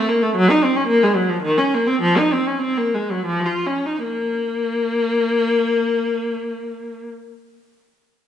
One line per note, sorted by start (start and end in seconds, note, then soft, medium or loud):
0.09 0.22 A#3 medium
0.23 0.36 A3 medium
0.36 0.49 F#3 loud
0.50 0.63 D#4 medium
0.64 0.77 C4 medium
0.76 0.89 C#4 medium
0.87 1.01 A#3 medium
1.03 1.16 G#3 medium
1.15 1.29 F#3 medium
1.30 1.43 F3 medium
1.43 1.56 D#3 loud
1.58 1.71 C#4 medium
1.75 1.87 A#3 medium
1.87 2.01 C4 medium
2.02 2.15 F3 medium
2.18 2.32 D#4 medium
2.33 2.47 C4 medium
2.47 2.63 C#4 medium
2.62 2.78 C4 medium
2.78 2.95 A#3 medium
2.94 3.12 G#3 medium
3.11 3.29 F#3 medium
3.26 3.46 F3 medium
3.46 3.66 F4 medium
3.67 3.86 C#4 medium
3.86 4.05 D#4 medium
4.04 7.08 A#3 medium